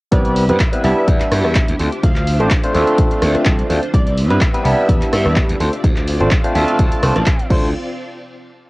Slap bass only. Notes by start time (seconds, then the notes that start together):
0.13 C2
0.49 G2
0.84 C2
1.08 E2
1.21 muted slap bass stroke
1.32 G2
1.45 E2
1.68 D2
1.80 D2
2.03 D2
2.40 A1
2.75 D2
3.11 muted slap bass stroke
3.22 D2
3.35 muted slap bass stroke
3.46 C2
3.70 D2
3.94 C2
4.30 G2
4.65 C2
4.89 E2
5.02 muted slap bass stroke
5.13 G2
5.25 E2
5.49 D2
5.60 D2
5.84 D2
6.21 A1
6.55 D2
6.79 D2
6.92 muted slap bass stroke
7.03 C2
7.16 A1
7.51 D2